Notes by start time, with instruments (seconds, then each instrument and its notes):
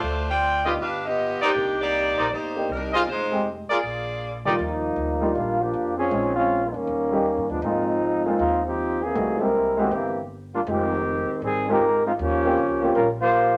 Already playing: saxophone section A3 D4 F4 C5
0.02 upright bass D2
0.29 saxophone section F4 C5 D5 G5
0.65 grand piano B3 D4 D#4 F4, trumpet section F4 G4 B4 D#5
0.78 upright bass G1, saxophone section D4 G4 B4 F5
1.05 saxophone section B3 F4 G4 D#5
1.41 saxophone section D#3 A#3 D4 G4, trumpet section D#4 A#4 C5 D5, muted upright bass stroke
1.53 upright bass C2, grand piano A#3 D4 D#4 G4
1.81 saxophone section A#3 D#4 G4 D5
2.17 upright bass A#1, trumpet section D#4 A#4 C5 D5
2.31 upright bass G1, saxophone section A#3 D#4 G4 C5
2.55 grand piano A#3 D4 D#4 G4
2.69 upright bass C2, saxophone section G3 D4 D#4 A#4
2.93 trumpet section F4 G#4 C5 D#5
3.07 upright bass F1, saxophone section G#3 D#4 F4 C5
3.31 grand piano G#3 C4 D#4 G4
3.69 saxophone section A#3 F4 G#4 D5, trumpet section F4 G#4 A#4 D5, muted upright bass stroke
3.83 upright bass A#1
4.45 grand piano D#2 G3 A#3 D4 F4, trombone section F3 G#3 A#3 D4, trumpet section D#4 F4 G4 D5
4.59 upright bass D#2, trombone section F3 G3 A#3 D#4
4.96 upright bass D2
5.21 grand piano G3 A#3 D4 D#4 F4
5.35 upright bass A#1, trombone section G3 A#3 D4 F4
5.61 trombone section F3 A#3 D4 G4
5.74 upright bass F2
5.97 trombone section F3 C4 C#4 G#4
6.11 upright bass A#1, grand piano G#3 C4 C#4 D#4 F4
6.36 trombone section G#3 C4 C#4 F4
6.74 upright bass E2, trombone section D#3 G3 A#3 C#4
6.87 upright bass D#2
7.11 grand piano G3 A#3 C#4 D#4 G4
7.37 upright bass G2
7.50 upright bass D#2, trombone section F3 G#3 B3 D4
7.62 upright bass G#1, trombone section F3 G#3 C4 D#4, grand piano G#3 A#3 C4 D#4 F4
8.26 grand piano G#3 A#3 C4 D#4 F4
8.38 upright bass D#2, trombone section G#3 C4 D#4 F4
8.66 trombone section F3 C4 D#4 G4
9.04 trombone section E3 A#3 C4 G#4
9.14 upright bass C2, grand piano G3 A3 B3 D#4 F#4
9.38 trombone section G3 C4 E4, grand piano G#3 A#3 C4 E4 G4
9.42 trombone section A#4
9.77 trombone section E3 A#3 C4 G4, grand piano G#3 A#3 C4 E4 G4
9.91 upright bass G1
10.54 trombone section G3 A#3 D4 F4
10.67 upright bass F1, trombone section D#3 G#3 C4 G4, grand piano G#3 C4 D#4 F4 G4
11.30 muted upright bass stroke
11.42 upright bass G#1, trombone section D#3 G3 C4 G#4
11.68 grand piano G#3 C4 D#4 F4 G4, trombone section G#3 D#4 G4 A#4
12.06 trombone section G#3 C4 D#4 F4
12.19 upright bass D#2, trombone section F3 A#3 C#4 G4
12.45 grand piano A#3 C4 C#4 F4 G4
12.57 upright bass C#2
12.82 grand piano A#3 C4 C#4 F4 G4
12.95 upright bass A#1, trombone section G3 C#4 F4 A#4
13.21 trombone section A#3 F4 G4 C5